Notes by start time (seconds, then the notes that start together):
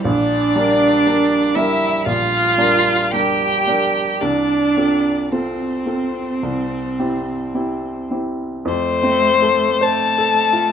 0.04 A#1 D4 D5
0.56 G3 D4 A#4
1.07 G3 D4 A#4
1.55 G3 D4 E4 A#4 E5
2.06 A#1 F4 F5
2.58 G3 D4 A#4
3.12 G3 D4 G4 A#4 G5
3.68 G3 D4 A#4
4.21 C2 D4 D5
4.77 C4 F4 A4
5.31 C4 F4 A4 C5
5.86 C4 F4 A4
6.43 C2
6.99 C4 E4 G4
7.55 C4 E4 G4
8.11 C4 E4 G4
8.65 F2 A3 C5
9.03 C4
9.42 A4
9.81 A3 C5 A5
10.18 A4
10.53 F4